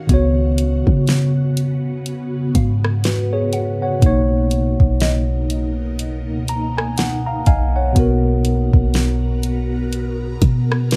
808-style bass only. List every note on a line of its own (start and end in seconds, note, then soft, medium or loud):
0.09 0.84 C#2 loud
0.87 2.51 C#3 medium
2.55 3.99 G#2 loud
4.03 4.77 B1 loud
4.80 6.30 B1 loud
6.28 7.43 C#2 loud
7.47 7.94 B1 loud
7.96 8.71 B1 loud
8.74 10.38 B1 loud
10.42 10.96 B2 loud